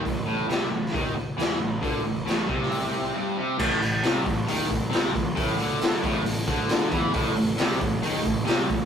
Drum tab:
CC |----------------|----------------|x---------------|----------------|
HH |o---o---o---o---|o---o---o-------|--o-o-o-o-o-o-o-|o-o-o-o-o-o-o-o-|
SD |----o--o----o---|----o--o--------|----o-------o---|----o-------o---|
BD |o-------o-------|o-----o---------|o-----o---o---o-|o-----o---o---o-|

CC |----------------|
HH |o-o-o-o-o-o-o-o-|
SD |----o-------o---|
BD |o-----o---o---o-|